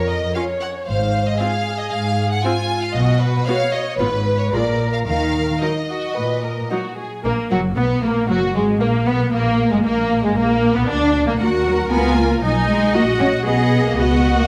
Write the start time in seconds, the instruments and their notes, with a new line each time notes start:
Already playing: cello section F2, violin section A#4
0.08 violin section D#5
0.34 viola section C#4 F4, violin section C#5 F5
0.61 violin section F#5
0.87 double bass section G#1, cello section G#2, violin section C5 F5
1.27 violin section D#5
1.39 viola section C4 F4, violin section G#4 F5
1.79 violin section D#5
1.91 cello section G#2, violin section F5
2.31 violin section F#5
2.43 viola section C4 F4, violin section F4 G#5
2.82 violin section F5
2.94 double bass section B1, cello section B2, violin section F#4 D#5
3.20 violin section B4
3.47 viola section B3 F#4, violin section C#5 F5
3.73 violin section D#5
3.98 double bass section G#1, cello section G#2, viola section B3 F4, violin section B4
4.39 violin section C#5
4.51 double bass section A#1, cello section A#2, viola section G#3 F4, violin section A#4 D5
4.93 violin section F5
5.06 double bass section D#2, cello section D#3, violin section A#4 F5
5.61 viola section F#3 D#4, violin section A#4 D#5
5.88 violin section F#4
6.15 cello section A#2, violin section B4
6.42 violin section A#4
6.71 viola section F#3 D#4, violin section F#4
6.97 violin section G#4
7.24 double bass section A#1, violin section A#3, cello section A#3, viola section A#3
7.51 double bass section F#1, cello section F#3, viola section F#3, violin section F#4
7.77 double bass section B1, viola section B3, cello section B3, violin section B3
8.03 double bass section A#1, cello section A#3, violin section A#3, viola section A#3
8.29 double bass section F#1, cello section F#3, viola section F#3, violin section F#4
8.55 double bass section G#1, viola section G#3, cello section G#3, violin section G#3
8.80 double bass section A#1, violin section A#3, viola section A#3, cello section A#3
9.06 double bass section B1, violin section B3, cello section B3, viola section B3
9.32 double bass section A#1, cello section A#3, violin section A#3, viola section A#3
9.71 double bass section G#1, viola section G#3, cello section G#3, violin section G#3
9.84 double bass section A#1, violin section A#3, cello section A#3, viola section A#3
10.23 double bass section G#1, viola section G#3, violin section G#3, cello section G#3
10.36 double bass section A#1, viola section A#3, cello section A#3, violin section A#3
10.75 double bass section B1, violin section B3, cello section B3, viola section B3
10.87 double bass section D2, viola section D4, cello section D4, violin section D4
11.27 double bass section A#1, viola section A#3, cello section A#3, violin section A#3
11.40 double bass section D#2, cello section A#3, viola section F#4, violin section A#4 F#5
11.66 cello section F#3
11.92 double bass section C#2, cello section B3, viola section F4, violin section G#5
12.18 cello section A#3
12.44 double bass section B1, cello section F#3, viola section D#4, violin section D#5 G#5
12.69 cello section G#3
12.94 double bass section A#1, cello section A#3, viola section F#4, violin section F#5
13.19 cello section C#4
13.45 double bass section B1, cello section B3, viola section G#4, violin section D#5 F#5
13.84 cello section A#3
13.96 double bass section C#2, cello section B3, viola section F#4, violin section D#5 F#5
14.36 cello section A#3